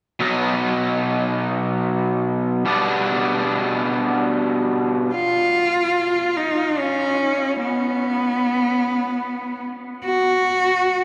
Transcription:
0.20 B2 F#3 B3 D#4
2.65 B2 G3 B3 D4
5.14 F4
6.37 D#4
6.78 C#4
7.62 B3
10.05 F#4

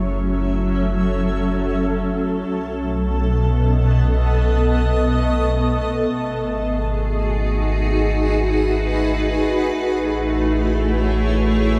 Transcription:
Already playing: F#1 F#3 A3 C#4 E4 C#5 E5
0.01 A4
2.48 B1 B2
2.93 B3
3.21 D#5
6.13 G#1 G#4
6.62 F#4
6.79 D#4
7.76 B4
9.72 A1 A3
9.91 E4
10.46 G#4 C#5

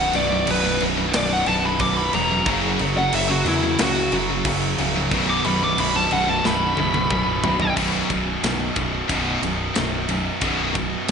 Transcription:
Already playing: B0 B1 F#2 B2 D3 B3 E4 B4 F#5
0.13 B0 B1 F#2 B2 D5, crash
0.32 B1 F#2
0.47 B0 B1 F#2 B2 B4, crash
0.65 B1 F#2
0.80 B0 B1 F#2 B2, crash
0.97 B1 F#2
1.13 B0 B1 F#2 B2 D5, snare, crash
1.33 F#5
1.46 B0 B1 F#2 B2 A5, crash
1.65 B1 F#2 B5
1.79 B0 B1 F#2 B2 D6, kick, crash
1.97 B5
2.13 E1 B1 F#2 B2 A#5, crash
2.31 B1 F#2
2.46 F#1 F#2 C#3 F#3 F#4 A#4, kick, crash
2.50 C#3 A#3
2.79 F#1 F#2 C#3 F#3, crash
2.98 F#2 C#3 F#5
3.13 F#1 F#2 C#3 F#3 E5, crash
3.30 F#2 C#3 F#4
3.45 E2 F#2 C#3 F#3 E4, crash
3.63 F#2 C#3
3.79 C#2 F#2 C#3 F#3 F#4, snare, crash
4.12 F#1 F#2 C#3 F#3, crash
4.29 F#2 C#3
4.45 F#1 F#2 C#3 F#3, kick, crash
4.78 C#1 F#2 C#3 F#3, crash
4.96 F#2 C#3
5.11 B0 B1 F#2 B2 D3 B3 B4, kick, crash
5.30 D6
5.44 B0 B1 F#2 B2 B5, crash
5.63 B1 F#2 D6
5.78 B0 B1 F#2 B2 B5, crash
5.95 B1 F#2 A5
6.11 B0 B1 F#2 B2 F#5, crash
6.28 B1 F#2 A5
6.44 B0 B1 F#2 B2 B5, snare
6.77 B0 B1 F#2 B2, high tom
6.94 B1 F#2, high tom
7.10 B0 B1 F#2 B2, kick, mid tom
7.44 B0 B1 F#2 B2, floor tom
7.60 B1 F#2, floor tom
7.76 B0 B1 F#2 B2, kick, crash
8.10 B0 B1 F#2 B2, kick, ride
8.43 B1 F#2 B2, snare, ride
8.76 B0 B1 F#2 B2, kick, ride
9.08 B0 B1 F#2 B2, kick, ride
9.42 B0 B1 F#2 B2, ride
9.74 B0 B1 F#2 B2, snare, ride
10.09 B1 F#2 B2, ride
10.41 B0 B1 F#2 B2, kick, ride
10.75 B1 F#2 B2, kick, ride

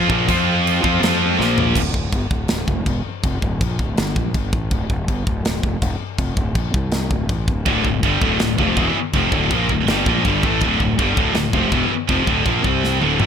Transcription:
Already playing: F4
0.09 A#1 A#2 F3 A#3, kick
0.28 F2 F3 C4 F4, kick, crash
0.67 crash
0.83 F2 F3 C4 F4, kick
1.01 F2 F3 C4 F4, snare, crash
1.37 A#1 A#2 F3 A#3, snare
1.58 floor tom
1.75 D1, kick, crash, china
1.94 D1, kick
2.13 G1, kick, china
2.30 D1, kick
2.48 D1, snare, china
2.68 F1, kick
2.86 E1, kick, china
3.06 muted fingered electric bass stroke
3.24 F1, kick, china
3.42 D1, kick
3.61 A#1, kick, china
3.79 D1, kick
3.97 G1, snare, china
4.16 A#1, kick
4.34 G1, kick, china
4.53 A1, kick
4.71 D1, kick, china
4.90 D1, kick
5.08 G1, kick, china
5.27 D1, kick
5.45 D1, snare, china
5.63 F1, kick
5.82 E1, kick, china
6.00 muted fingered electric bass stroke
6.18 F1, kick, china
6.37 D1, kick
6.55 A#1, kick, china
6.74 C2, kick
6.91 snare, china
7.11 D1, kick
7.29 A1, kick, china
7.48 D1, kick
7.65 D1 D2 A2 D3, kick, china
7.85 D1 D2 A2, kick
8.03 G1 G2 D3 G3, kick, china
8.22 D1 D2 A2 D3, kick
8.39 D1 D2 A2, snare, china
8.59 F1 F2 C3 F3, kick
8.76 E1 E2 B2 E3, kick, china
8.94 muted fingered electric bass stroke, muted distorted electric guitar stroke
9.13 F1 F2 C3 F3, kick, china
9.32 D1 D2 A2 D3, kick
9.51 A#1 A#2 F3 A#3, kick, china
9.69 D1 D2 A2, kick
9.88 G1 G2 D3 G3, snare, china
10.06 A#1 A#2 F3 A#3, kick
10.23 G1 G2 D3 G3, kick, china
10.27 G2
10.43 A1 A2 E3 A3, kick
10.61 D1 D2 A2 D3, kick, china
10.79 D1 D2 A2, kick
10.98 G1 G2 D3 G3, kick, china
11.17 D1 D2 A2 D3, kick
11.34 D1 D2 A2, snare, china
11.53 F1 F2 C3 F3, kick
11.71 E1 E2 B2 E3, kick, china
11.90 muted fingered electric bass stroke, muted distorted electric guitar stroke
12.09 F1 F2 C3 F3, kick, china
12.27 D1 D2 A2 D3, kick
12.46 A#1 A#2 F3 A#3, kick, china
12.64 C2 C3 G3 C4, kick
12.84 snare
13.01 D1 D2 A2 D3, high tom
13.19 A1 A2 E3 A3, mid tom

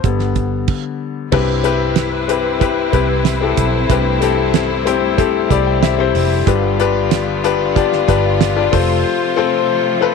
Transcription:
0.04 G1 D3 G3 B3, kick, closed hi-hat
0.19 snare
0.36 kick, closed hi-hat
0.68 kick, crash
1.32 C2 G2 G3 C4 E4 G4 B4, kick, crash
1.64 C4 E4 G4 B4, closed hi-hat
1.96 snare, closed hi-hat
2.28 C4 E4 G4 B4, closed hi-hat
2.60 C4 E4 G4 B4, kick, closed hi-hat
2.93 C2 C4 E4 G4 B4, kick, closed hi-hat
3.25 snare, closed hi-hat
3.41 C4 E4 G4 A4
3.57 B1, kick, closed hi-hat
3.90 C2 G2 A3 C4 E4 G4 B4, kick, closed hi-hat
4.21 C4 E4 G4 A4, closed hi-hat
4.54 snare, closed hi-hat
4.85 C4 E4 G4 C5, closed hi-hat
5.17 C4 E4 G4 A4, kick, closed hi-hat
5.50 C2 C4 E4 G4 D5 B5, kick, closed hi-hat
5.67 G5
5.83 E5, snare, closed hi-hat
5.98 C4 E4 G4 C5
6.15 F1, open hi-hat
6.47 G1 G2 D3 B3 D4 F4 G4 B4, kick, closed hi-hat
6.79 D4 F4 G4 B4, closed hi-hat
7.11 snare, closed hi-hat
7.44 D4 F4 G4 B4, closed hi-hat
7.75 D4 F4 G4 D5, kick, closed hi-hat
7.93 snare
8.08 G1 D4 F4 G4 B4, kick, closed hi-hat
8.41 snare, closed hi-hat
8.56 D4 F4 G4 D5
8.72 F1 C3 F3 A3 C4 F4 A4 C5, kick, open hi-hat
9.37 C4 F4 A4 C5
10.01 C4 F4 A4 B4

